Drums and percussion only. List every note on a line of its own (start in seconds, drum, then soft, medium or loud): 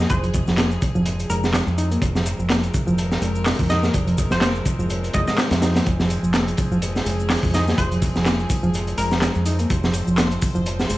0.00 snare soft
0.10 kick loud
0.10 closed hi-hat medium
0.10 shaker soft
0.24 closed hi-hat soft
0.24 shaker soft
0.34 kick loud
0.34 closed hi-hat medium
0.34 shaker medium
0.48 snare soft
0.48 shaker soft
0.58 snare loud
0.58 clap loud
0.58 closed hi-hat medium
0.58 shaker soft
0.71 shaker soft
0.82 kick medium
0.82 closed hi-hat medium
0.82 shaker medium
0.95 shaker soft
1.06 closed hi-hat medium
1.06 shaker soft
1.19 closed hi-hat soft
1.19 shaker soft
1.30 closed hi-hat medium
1.30 shaker medium
1.43 snare medium
1.43 shaker soft
1.53 snare loud
1.53 clap loud
1.53 closed hi-hat medium
1.53 shaker soft
1.68 shaker soft
1.78 closed hi-hat medium
1.78 shaker medium
1.92 closed hi-hat soft
1.92 shaker soft
2.02 kick loud
2.02 closed hi-hat medium
2.02 shaker soft
2.15 snare medium
2.15 shaker soft
2.26 closed hi-hat medium
2.26 shaker medium
2.39 shaker soft
2.50 snare loud
2.50 clap loud
2.50 closed hi-hat loud
2.50 shaker soft
2.63 closed hi-hat soft
2.63 shaker soft
2.74 kick loud
2.74 closed hi-hat medium
2.74 shaker medium
2.87 shaker soft
2.98 closed hi-hat medium
2.98 shaker soft
3.11 snare medium
3.11 shaker soft
3.22 closed hi-hat medium
3.22 shaker medium
3.35 shaker soft
3.46 snare loud
3.46 clap loud
3.46 open hi-hat medium
3.46 shaker soft
3.59 kick loud
3.59 shaker soft
3.70 snare medium
3.70 closed hi-hat medium
3.70 shaker medium
3.83 snare soft
3.83 shaker soft
3.94 kick loud
3.94 closed hi-hat medium
3.94 shaker soft
4.07 closed hi-hat soft
4.07 shaker soft
4.18 kick loud
4.18 closed hi-hat medium
4.18 shaker medium
4.31 snare medium
4.31 shaker soft
4.41 snare loud
4.41 clap loud
4.41 closed hi-hat medium
4.41 shaker soft
4.55 shaker soft
4.66 kick medium
4.66 closed hi-hat medium
4.66 shaker medium
4.79 shaker soft
4.90 closed hi-hat medium
4.90 shaker soft
5.04 closed hi-hat soft
5.04 shaker soft
5.13 kick loud
5.13 closed hi-hat medium
5.13 shaker medium
5.27 snare soft
5.27 shaker soft
5.38 snare loud
5.38 clap loud
5.38 closed hi-hat medium
5.38 shaker soft
5.51 snare loud
5.51 closed hi-hat medium
5.51 shaker soft
5.62 snare loud
5.62 closed hi-hat medium
5.62 shaker medium
5.76 snare loud
5.76 closed hi-hat medium
5.76 shaker soft
5.86 kick loud
5.86 closed hi-hat medium
5.86 shaker soft
6.00 snare medium
6.00 shaker soft
6.10 closed hi-hat medium
6.10 open hi-hat medium
6.10 shaker medium
6.24 shaker soft
6.34 snare loud
6.34 clap loud
6.34 closed hi-hat medium
6.34 shaker soft
6.48 closed hi-hat soft
6.48 shaker soft
6.57 kick medium
6.57 closed hi-hat medium
6.57 open hi-hat medium
6.57 shaker medium
6.72 shaker soft
6.82 closed hi-hat medium
6.82 shaker soft
6.96 snare medium
6.96 shaker soft
7.06 closed hi-hat medium
7.06 open hi-hat medium
7.06 shaker medium
7.20 shaker soft
7.30 snare loud
7.30 clap loud
7.30 open hi-hat medium
7.30 shaker soft
7.43 kick loud
7.43 shaker soft
7.54 snare soft
7.54 closed hi-hat medium
7.54 open hi-hat medium
7.54 shaker medium
7.68 snare soft
7.68 shaker soft
7.78 kick loud
7.78 closed hi-hat medium
7.78 shaker soft
7.92 closed hi-hat soft
7.92 shaker soft
8.02 kick medium
8.02 closed hi-hat medium
8.02 open hi-hat medium
8.02 shaker medium
8.16 snare soft
8.16 shaker soft
8.26 snare loud
8.26 clap loud
8.26 closed hi-hat medium
8.26 shaker soft
8.39 shaker soft
8.50 kick loud
8.50 closed hi-hat medium
8.50 open hi-hat medium
8.50 shaker medium
8.63 shaker soft
8.74 closed hi-hat medium
8.74 shaker soft
8.87 closed hi-hat soft
8.87 shaker soft
8.98 closed hi-hat medium
8.98 open hi-hat medium
8.98 shaker medium
9.11 snare medium
9.11 shaker soft
9.22 snare loud
9.22 clap loud
9.22 closed hi-hat medium
9.22 shaker soft
9.35 shaker soft
9.46 closed hi-hat medium
9.46 open hi-hat medium
9.46 shaker medium
9.59 closed hi-hat soft
9.59 shaker soft
9.70 kick loud
9.70 closed hi-hat medium
9.70 shaker soft
9.83 snare medium
9.83 shaker soft
9.93 closed hi-hat medium
9.93 open hi-hat medium
9.93 shaker medium
10.07 shaker soft
10.18 snare loud
10.18 clap medium
10.18 closed hi-hat medium
10.18 shaker soft
10.31 closed hi-hat soft
10.31 shaker soft
10.42 kick medium
10.42 closed hi-hat medium
10.42 open hi-hat medium
10.42 shaker medium
10.55 shaker soft
10.66 closed hi-hat medium
10.66 shaker soft
10.79 snare medium
10.79 shaker soft
10.90 closed hi-hat medium
10.90 open hi-hat medium
10.90 shaker medium